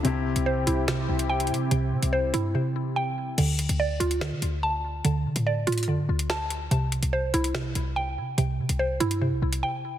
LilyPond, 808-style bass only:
\new Staff \with { instrumentName = "808-style bass" } { \clef bass \time 4/4 \key d \minor \tempo 4 = 144 c,8. c,8. c,4 c,4 c8 | c,8 c16 c,8. g,8 r2 | d,8. d,8. d,8. d16 d,4. | d,8 d16 a,8. a,8 f,16 a,16 d,4. |
c,8. c,8. c,4 c,4 c8 | c,8 c16 c,8. g,8. bes,,16 c,8 r4 | }